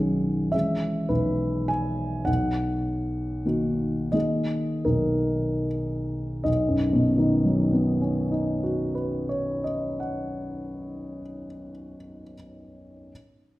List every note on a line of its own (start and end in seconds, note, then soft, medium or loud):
0.00 0.56 B1 soft
0.00 0.49 D#3 soft
0.00 0.49 F#3 soft
0.00 0.49 C#4 soft
0.00 0.50 G#4 soft
0.00 0.53 F#5 soft
0.52 2.23 E3 soft
0.52 2.24 G#3 soft
0.52 2.24 C#4 soft
0.52 2.24 G#4 soft
0.52 1.10 E5 medium
1.09 2.23 B1 soft
1.09 1.68 B4 medium
1.68 2.27 G#5 medium
2.25 3.43 B1 soft
2.25 4.13 F#5 medium
3.45 4.09 D#3 soft
3.45 4.09 A#3 soft
3.45 4.09 D#4 soft
3.45 4.09 F#4 soft
4.12 6.42 D#3 soft
4.12 6.42 A#3 soft
4.12 6.42 D#4 soft
4.12 6.43 G#4 soft
4.12 4.86 D#5 medium
4.85 6.42 B1 soft
4.85 5.67 A#4 soft
6.44 11.22 B1 soft
6.44 9.63 D#5 soft
6.68 11.46 F#2 soft
6.93 11.71 B2 soft
7.18 11.96 D#3 soft
7.45 12.23 F#3 soft
7.72 12.33 B3 soft
8.01 12.33 C#4 soft
8.32 12.34 D#4 soft
8.63 12.34 F#4 soft
8.95 12.34 B4 soft
9.29 12.35 C#5 soft
9.64 12.35 D#5 soft
10.00 12.35 F#5 soft